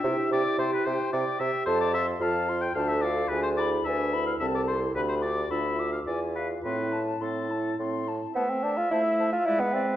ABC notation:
X:1
M:3/4
L:1/16
Q:1/4=109
K:Am
V:1 name="Flute"
g2 g2 g2 g2 g2 g2 | a2 c'2 a2 c'2 a2 f2 | ^g2 b2 g2 b2 a2 c'2 | b2 d'2 b2 d'2 ^g2 f2 |
c'2 a2 c'2 a2 c'2 a2 | a2 a2 a2 a2 e2 e2 |]
V:2 name="Oboe"
e2 d2 c B c2 d2 e2 | c d e2 f3 g f e d2 | B c d2 e3 f e d c2 | B c d2 e3 f d2 B2 |
B3 z A4 z4 | e8 B4 |]
V:3 name="French horn"
E8 G4 | A2 z2 F4 A4 | ^G4 B4 A4 | G4 F8 |
E8- E2 z2 | A,4 A,4 ^G,4 |]
V:4 name="Clarinet"
G2 G2 G2 G2 G2 G2 | A2 F2 A2 F2 D2 F2 | D2 E2 D2 E2 C2 E2 | D2 F2 D2 F2 E2 F2 |
C2 E2 C2 E2 C2 E2 | c2 c2 c2 c2 d2 d2 |]
V:5 name="Bassoon" clef=bass
C,2 C,2 C,2 C,2 C,2 C,2 | F,,4 F,,4 D,,4 | D,,4 D,,4 C,,4 | D,,4 D,,4 E,,4 |
A,,4 A,,4 A,,4 | B, C D F E3 F E B, C2 |]